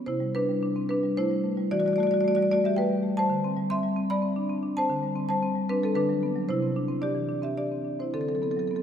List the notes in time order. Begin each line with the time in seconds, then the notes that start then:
0.06 C3 E4 C5
0.20 G3
0.35 D4 B4
0.49 G3
0.63 D4
0.76 C4
0.89 D4 B4
1.03 G3
1.17 A3 E4 C5
1.31 G3
1.44 A3
1.57 G3
1.71 E3 F#4 D5
1.79 F#4 D5
1.85 G3 F#4 D5
1.93 F#4 D5
1.98 A3 F#4
2.03 D5
2.07 F#4 D5
2.11 G3 F#4
2.21 A3 F#4 D5
2.28 F#4 D5
2.35 G3 F#4 D5
2.42 D5
2.51 A3 F#4 D5
2.64 G3 G4 E5
2.76 A3 B4 G5
2.90 G3
3.03 A3
3.17 G3 C5 A5
3.29 D3
3.44 C4
3.56 G3
3.70 C4 E5 C6
3.83 G3
3.96 C4
4.10 G3 D5 B5
4.22 C4
4.36 D4
4.50 C4
4.63 D4
4.77 C4 C5 A5
4.89 D3
5.03 G3
5.16 C4
5.29 G3 C5 A5
5.43 C4
5.55 G3
5.69 C4 D4 B4
5.83 G3 C4 A4
5.95 D3 D4 B4
6.09 F#3
6.23 B3
6.36 F#3
6.49 C3 E4 C5
6.62 C4
6.76 D4
6.88 C4
7.02 D4 G4 D5
7.15 E3
7.29 D4
7.42 C4 G4 E5
7.58 D4 G4 D5
7.72 C4
7.85 D4
7.99 C4 E4 C5
8.14 D3 C4 A4
8.21 C4 A4
8.28 F#3 C4 A4
8.35 C4 A4
8.42 B3 C4 A4
8.51 C4 A4
8.57 F#3 C4 A4
8.67 B3 C4 A4
8.75 C4 A4